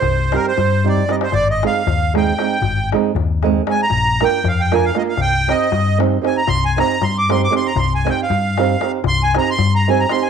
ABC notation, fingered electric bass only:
X:1
M:5/8
L:1/8
Q:1/4=116
K:Cm
V:1 name="Fingered electric bass" clef=bass
C,,2 G,,3 | A,,,2 E,,3 | A,,,2 E,,3 | B,,,2 F,,3 |
C,,2 G,,3 | C,,2 G,,3 | C,,2 G,,3 | C,,2 G,,3 |]